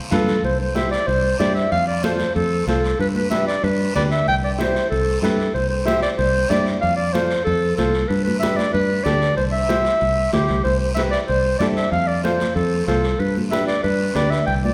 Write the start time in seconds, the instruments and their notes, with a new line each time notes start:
0.11 fingered electric bass G2, upright piano F4 A4 B4, clarinet A4, high conga, low conga, short guiro
0.28 low conga, short guiro
0.44 fingered electric bass C2, clarinet C5, high conga, long guiro
0.60 clarinet C5
0.75 upright piano E4 G4 C5, clarinet E5, high conga, short guiro
0.91 clarinet D5, short guiro
1.07 fingered electric bass C2, clarinet C5, long guiro
1.24 high conga
1.39 fingered electric bass G2, upright piano E4 G4 C5, clarinet D5, high conga, short guiro
1.55 clarinet E5, short guiro
1.71 fingered electric bass F2, clarinet F5, high conga, long guiro
1.87 clarinet D5
2.03 upright piano F4 A4 C5, clarinet C5, high conga, short guiro
2.20 high conga, short guiro
2.35 fingered electric bass F2, clarinet A4, long guiro
2.52 high conga
2.67 fingered electric bass C2, upright piano F4 A4 C5, clarinet A4, high conga, short guiro
2.85 short guiro
2.99 fingered electric bass G2, clarinet B4, high conga, long guiro
3.15 clarinet B4, high conga
3.31 upright piano D4 G4 B4, clarinet E5, high conga, short guiro
3.47 clarinet D5, short guiro
3.64 fingered electric bass G2, clarinet B4, long guiro
3.80 high conga
3.95 fingered electric bass D2, upright piano D4 G4 B4, clarinet D5, high conga, short guiro
4.11 clarinet E5, short guiro
4.28 fingered electric bass C2, clarinet G5, high conga, long guiro
4.44 clarinet D5
4.58 upright piano E4 G4 C5, clarinet C5, high conga, short guiro
4.76 short guiro
4.90 fingered electric bass C2, clarinet A4, long guiro
5.08 high conga
5.21 fingered electric bass G2, upright piano E4 G4 B4, clarinet A4, high conga, short guiro
5.40 short guiro
5.54 fingered electric bass C2, clarinet C5, high conga, long guiro
5.69 clarinet C5
5.85 upright piano E4 G4 C5, clarinet E5, high conga, short guiro
6.02 clarinet D5, short guiro
6.18 fingered electric bass C2, clarinet C5, long guiro
6.36 high conga
6.49 fingered electric bass G2, upright piano E4 G4 D5, clarinet D5, high conga, short guiro
6.67 short guiro
6.81 fingered electric bass F2, clarinet F5, high conga, long guiro
6.96 clarinet D5
7.13 upright piano F4 A4 C5, clarinet C5, high conga, short guiro
7.31 short guiro
7.44 fingered electric bass F2, clarinet A4, long guiro
7.64 high conga
7.77 fingered electric bass C2, upright piano F4 A4 C5, clarinet A4, high conga, short guiro
7.94 short guiro
8.08 fingered electric bass G2, clarinet B4, high conga, long guiro
8.24 clarinet B4, high conga
8.40 upright piano D4 G4 B4, clarinet E5, high conga, short guiro
8.56 clarinet D5, high conga, short guiro
8.73 fingered electric bass G2, clarinet B4, long guiro
8.91 high conga
9.04 fingered electric bass D2, upright piano D4 G4 A4, clarinet D5, high conga, short guiro
9.22 short guiro
9.36 fingered electric bass C2, clarinet C5, high conga, long guiro
9.52 clarinet E5
9.69 upright piano E4 G4 C5, high conga, short guiro
9.85 short guiro
10.01 fingered electric bass C2, long guiro
10.18 high conga
10.33 fingered electric bass D2, upright piano E4 G4 C5, clarinet G4, high conga, short guiro
10.49 fingered electric bass C2, short guiro
10.64 fingered electric bass C2, clarinet C5, high conga, long guiro
10.79 clarinet C5
10.94 upright piano E4 G4 B4, clarinet E5, high conga, short guiro
11.11 clarinet D5, short guiro
11.27 fingered electric bass C2, clarinet C5, long guiro
11.45 high conga
11.59 fingered electric bass G2, upright piano E4 G4 A4, clarinet D5, high conga, short guiro
11.76 clarinet E5, short guiro
11.92 fingered electric bass F2, clarinet F5, high conga, long guiro
12.07 clarinet D5
12.23 upright piano F4 A4 C5, clarinet C5, high conga, short guiro
12.40 high conga, short guiro
12.55 fingered electric bass F2, clarinet A4, long guiro
12.73 high conga
12.87 fingered electric bass C2, upright piano F4 A4 C5, clarinet A4, high conga, short guiro
13.04 short guiro
13.19 fingered electric bass G2, clarinet B4, high conga, long guiro
13.37 high conga
13.51 upright piano D4 G4 B4, clarinet E5, high conga, short guiro
13.67 clarinet D5, short guiro
13.83 fingered electric bass G2, clarinet B4, long guiro
14.00 high conga
14.15 fingered electric bass D2, upright piano D4 G4 B4, clarinet D5, high conga, short guiro
14.30 clarinet E5, short guiro
14.46 fingered electric bass C2, clarinet G5, high conga, long guiro
14.63 clarinet D5, high conga